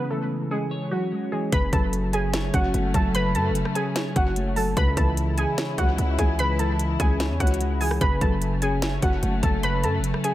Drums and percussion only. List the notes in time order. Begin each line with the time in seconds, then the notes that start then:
1.52 kick, closed hi-hat
1.73 kick, closed hi-hat
1.93 closed hi-hat
2.13 closed hi-hat
2.34 snare, closed hi-hat
2.54 kick, closed hi-hat
2.74 closed hi-hat
2.94 kick, closed hi-hat
3.15 closed hi-hat
3.35 closed hi-hat
3.55 closed hi-hat
3.65 cross-stick
3.75 closed hi-hat
3.96 snare, closed hi-hat
4.16 kick, closed hi-hat
4.36 closed hi-hat
4.56 open hi-hat
4.77 kick, closed hi-hat
4.97 kick, closed hi-hat
5.17 closed hi-hat
5.38 closed hi-hat
5.58 snare, closed hi-hat
5.78 kick, closed hi-hat
5.98 closed hi-hat
6.19 kick, closed hi-hat
6.39 closed hi-hat
6.59 closed hi-hat
6.79 closed hi-hat
7.00 kick, closed hi-hat
7.20 snare, closed hi-hat
7.40 kick, closed hi-hat
7.47 closed hi-hat
7.54 closed hi-hat
7.61 closed hi-hat
7.81 open hi-hat
7.91 cross-stick
8.01 kick, closed hi-hat
8.21 kick, closed hi-hat
8.42 closed hi-hat
8.62 closed hi-hat
8.82 snare, closed hi-hat
9.02 kick, closed hi-hat
9.23 closed hi-hat
9.43 kick, closed hi-hat
9.63 closed hi-hat
9.84 closed hi-hat
10.04 closed hi-hat
10.14 cross-stick
10.24 closed hi-hat